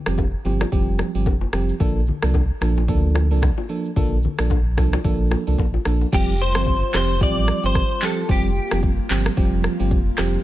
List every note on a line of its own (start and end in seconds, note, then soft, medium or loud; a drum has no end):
0.06 0.34 F1 medium
0.06 0.25 F3 medium
0.06 0.25 G3 medium
0.06 0.25 C4 medium
0.06 0.26 G4 medium
0.06 cross-stick loud
0.06 shaker medium
0.18 kick medium
0.18 high bongo medium
0.18 shaker medium
0.45 0.64 G1 medium
0.45 0.66 F3 medium
0.45 0.66 G3 medium
0.45 0.66 C4 medium
0.45 0.66 G4 medium
0.45 low bongo medium
0.45 shaker soft
0.61 cross-stick loud
0.61 low bongo medium
0.61 shaker medium
0.72 1.03 F1 loud
0.72 1.11 F3 medium
0.72 1.11 G3 medium
0.72 1.11 C4 medium
0.72 1.11 G4 loud
0.72 kick loud
0.72 low conga medium
0.72 shaker medium
0.99 cross-stick medium
0.99 low bongo medium
0.99 shaker medium
1.15 1.28 G1 medium
1.15 1.33 F3 medium
1.15 1.33 G3 medium
1.15 1.34 C4 medium
1.15 1.34 G4 medium
1.15 shaker medium
1.26 1.46 F1 medium
1.26 kick loud
1.26 high bongo medium
1.26 shaker medium
1.41 low bongo medium
1.53 1.72 F1 medium
1.53 1.74 F3 medium
1.53 1.74 G3 medium
1.53 1.74 C4 medium
1.53 1.74 G4 medium
1.53 cross-stick loud
1.53 shaker medium
1.69 shaker medium
1.80 2.11 A#1 loud
1.80 2.01 F3 medium
1.80 2.01 A#3 medium
1.80 2.01 D4 medium
1.80 2.01 A4 loud
1.80 kick loud
1.80 low conga medium
1.80 shaker medium
2.07 low conga medium
2.07 shaker medium
2.22 2.50 C2 medium
2.22 2.41 F3 medium
2.22 2.42 A#3 medium
2.22 2.42 D4 medium
2.22 2.42 A4 medium
2.22 cross-stick loud
2.22 shaker medium
2.34 kick medium
2.34 high bongo medium
2.34 shaker medium
2.61 2.90 A#1 medium
2.61 2.82 F3 medium
2.61 2.82 A#3 medium
2.61 2.82 D4 medium
2.61 2.82 A4 medium
2.61 cross-stick medium
2.61 low bongo medium
2.61 shaker medium
2.77 low bongo medium
2.77 shaker medium
2.88 3.32 D2 loud
2.88 3.27 F3 medium
2.88 3.27 A#3 medium
2.88 3.27 D4 medium
2.88 3.27 A4 loud
2.88 kick loud
2.88 low conga medium
2.88 shaker medium
3.15 cross-stick medium
3.15 low bongo medium
3.15 shaker medium
3.31 3.50 C2 loud
3.31 3.50 F3 medium
3.31 3.50 A#3 medium
3.31 3.50 D4 medium
3.31 3.50 A4 medium
3.31 shaker medium
3.42 kick loud
3.42 cross-stick medium
3.42 high bongo medium
3.42 shaker medium
3.58 low bongo medium
3.69 3.90 F3 medium
3.69 3.90 A#3 medium
3.69 3.90 D4 medium
3.69 3.90 A4 medium
3.69 shaker medium
3.85 shaker medium
3.96 4.27 A#1 loud
3.96 4.17 F3 loud
3.96 4.17 A#3 medium
3.96 4.17 D4 medium
3.96 4.18 A4 loud
3.96 kick loud
3.96 low conga medium
3.96 shaker medium
4.23 low conga medium
4.23 shaker medium
4.39 4.79 A#1 medium
4.39 4.58 F3 medium
4.39 4.58 A#3 medium
4.39 4.58 D4 medium
4.39 4.58 A4 medium
4.39 cross-stick loud
4.39 shaker medium
4.50 kick medium
4.50 high bongo medium
4.50 shaker medium
4.77 4.97 C2 loud
4.77 4.98 F3 medium
4.77 4.98 A#3 medium
4.77 4.99 D4 medium
4.77 4.99 A4 medium
4.77 kick medium
4.77 cross-stick medium
4.77 low bongo medium
4.77 shaker soft
4.93 cross-stick loud
4.93 low bongo medium
4.93 shaker medium
5.04 5.35 A#1 medium
5.04 5.43 F3 medium
5.04 5.43 A#3 medium
5.04 5.44 D4 medium
5.04 5.44 A4 loud
5.04 kick loud
5.04 low conga medium
5.04 shaker medium
5.31 cross-stick medium
5.31 low bongo medium
5.31 shaker medium
5.47 5.56 C2 medium
5.47 5.66 F3 medium
5.47 5.66 A#3 medium
5.47 5.66 D4 medium
5.47 5.66 A4 medium
5.47 shaker medium
5.58 5.78 A#1 medium
5.58 kick loud
5.58 high bongo medium
5.58 shaker medium
5.74 low bongo medium
5.85 6.05 A#1 medium
5.85 6.06 F3 medium
5.85 6.07 A#3 medium
5.85 6.07 D4 medium
5.85 6.07 A4 medium
5.85 cross-stick medium
5.85 high bongo soft
5.85 shaker medium
6.01 high bongo medium
6.01 shaker medium
6.12 6.57 F1 loud
6.12 6.33 F3 loud
6.12 6.34 G3 medium
6.12 10.41 G3 medium
6.12 8.27 C4 medium
6.12 6.34 C4 medium
6.12 10.43 F4 medium
6.12 6.34 G4 loud
6.12 6.41 G4 medium
6.12 kick loud
6.12 crash loud
6.12 shaker medium
6.39 6.95 C5 loud
6.39 shaker medium
6.55 6.83 G1 medium
6.55 6.74 F3 medium
6.55 6.74 G3 medium
6.55 6.74 C4 medium
6.55 6.74 G4 medium
6.55 cross-stick loud
6.55 shaker medium
6.67 kick medium
6.67 shaker medium
6.93 7.22 F1 medium
6.93 7.15 F3 medium
6.93 7.15 G3 medium
6.93 7.15 C4 medium
6.93 7.15 G4 medium
6.93 7.22 C5 loud
6.93 cross-stick loud
6.93 clap medium
6.93 open hi-hat medium
6.93 shaker medium
7.09 shaker medium
7.20 7.52 A1 loud
7.20 7.60 F3 medium
7.20 7.60 G3 medium
7.20 7.60 C4 medium
7.20 7.60 G4 loud
7.20 7.65 D5 loud
7.20 kick loud
7.20 shaker medium
7.48 cross-stick loud
7.48 shaker medium
7.63 7.83 G1 medium
7.63 7.82 F3 medium
7.63 7.82 G3 medium
7.63 7.82 C4 medium
7.63 7.82 G4 medium
7.63 8.04 C5 loud
7.63 shaker medium
7.75 kick loud
7.75 cross-stick medium
7.75 shaker medium
8.02 8.23 F3 medium
8.02 8.23 G3 medium
8.02 8.23 C4 medium
8.02 8.23 G4 medium
8.02 8.28 A4 medium
8.02 clap loud
8.02 open hi-hat medium
8.02 shaker medium
8.18 shaker medium
8.29 8.60 F1 loud
8.29 8.50 F3 loud
8.29 8.50 G3 medium
8.29 10.43 A#3 medium
8.29 8.50 C4 medium
8.29 8.50 G4 loud
8.29 8.80 G4 medium
8.29 kick loud
8.29 shaker medium
8.56 shaker medium
8.71 8.99 F1 loud
8.71 8.90 F3 medium
8.71 8.90 G3 medium
8.71 8.90 C4 medium
8.71 8.90 G4 medium
8.71 cross-stick loud
8.71 shaker medium
8.83 kick medium
8.83 shaker medium
9.10 9.29 G1 medium
9.10 9.31 F3 medium
9.10 9.31 G3 medium
9.10 9.31 C4 medium
9.10 9.31 G4 medium
9.10 clap medium
9.10 open hi-hat medium
9.10 shaker soft
9.26 cross-stick loud
9.26 shaker medium
9.37 9.68 F1 loud
9.37 9.76 F3 medium
9.37 9.76 G3 medium
9.37 9.76 C4 medium
9.37 9.76 G4 loud
9.37 kick loud
9.37 shaker medium
9.64 cross-stick medium
9.64 shaker medium
9.79 9.93 G1 medium
9.79 9.98 F3 medium
9.79 9.98 G3 medium
9.79 9.98 C4 medium
9.79 9.98 G4 medium
9.79 shaker medium
9.91 10.11 F1 medium
9.91 kick loud
9.91 shaker medium
10.18 10.38 F1 medium
10.18 10.39 F3 medium
10.18 10.39 G3 medium
10.18 10.39 C4 medium
10.18 10.39 G4 medium
10.18 cross-stick loud
10.18 clap loud
10.18 open hi-hat medium
10.18 shaker medium
10.34 shaker medium